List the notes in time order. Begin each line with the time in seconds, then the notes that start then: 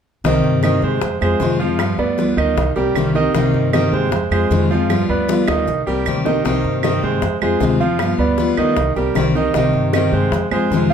0.24 C2 C3 D#3 A#3 C4 D#4 G4 D#5, high bongo
0.44 G2, high bongo
0.63 C3 D#3 A#3 C4 D#4 G4 D#5, high bongo, claves
0.82 G2 G#3 C5, high bongo
1.01 F2, muted steel-string acoustic guitar stroke, high bongo
1.21 F2 G#3 C4 F4 G#4 C5, high bongo, claves
1.40 F2 C3 D#3 G#3 C4 F4, high bongo, low bongo
1.60 F3 G#3 C4 F4 F5
1.79 G2 G3 B3 F4, high bongo, claves
1.98 D2 B3 B4 D5, high bongo
2.18 G3 B3 F4, high bongo
2.37 D2 D#3 D#4 D#5, high bongo, claves
2.56 C2, muted steel-string acoustic guitar stroke, high bongo
2.76 C2 G3 A#3 C4 G4 A#4, high bongo
2.95 C2 C3 D#3 A#3 C4 G4, high bongo, low bongo, claves
3.15 D#3 A#3 C4 D#4 G4 D#5
3.34 C2 C3 D#3 A#3 C4 D#4 G4 D#5, high bongo
3.53 G2, high bongo
3.73 C3 D#3 A#3 C4 D#4 G4 D#5, high bongo, claves
3.93 G2 G#3 C5, high bongo
4.12 F2, muted steel-string acoustic guitar stroke, high bongo
4.31 F2 G#3 C4 F4 G#4 C5, high bongo, claves
4.50 F2 C3 D#3 G#3 C4 F4, high bongo, low bongo
4.70 F3 G#3 C4 F4 F5
4.90 G2 G3 B3 F4, high bongo, claves
5.09 D2 B3 B4 D5
5.28 G3 B3 F4, high bongo
5.48 D2 D#3 D#4 D#5, high bongo, claves
5.67 C2, muted steel-string acoustic guitar stroke
5.86 C2 G3 A#3 C4 G4 A#4
6.06 D2 C3 D#3 A#3 C4 G4, claves
6.25 C2 D#3 A#3 C4 D#4 G4 D#5, low bongo
6.45 C2 C3 D#3 A#3 C4 D#4 G4 D#5, high bongo
6.64 G2, high bongo
6.83 C3 D#3 A#3 C4 D#4 G4 D#5, high bongo, claves
7.03 G2 G#3 C5, high bongo
7.22 F2, muted steel-string acoustic guitar stroke, high bongo
7.41 F2 G#3 C4 F4 G#4 C5, high bongo, claves
7.60 D2 C3 D#3 G#3 C4 F4, high bongo, low bongo
7.80 F3 G#3 C4 F4 F5
7.99 G2 G3 B3 F4, high bongo, claves
8.18 D2 B3 B4 D5, high bongo
8.38 G3 B3 F4, high bongo
8.57 D2 D#3 D#4 D#5, high bongo, claves
8.77 C2, muted steel-string acoustic guitar stroke, high bongo
8.96 C2 G3 A#3 C4 G4 A#4, high bongo
9.15 C2 C3 D#3 A#3 C4 G4, high bongo, low bongo, claves
9.35 D#3 A#3 C4 D#4 G4 D#5
9.54 C2 C3 D#3 A#3 C4 D#4 G4 D#5, high bongo
9.73 G2, high bongo
9.93 C3 D#3 A#3 C4 D#4 G4 D#5, high bongo, claves
10.12 G2 G#3 C5, high bongo
10.31 F2, muted steel-string acoustic guitar stroke, high bongo
10.51 F2 G#3 C4 F4 G#4 C5, high bongo, claves
10.70 F2 C3 D#3 G#3 C4, high bongo, low bongo
10.74 F4
10.90 F3 F4 F5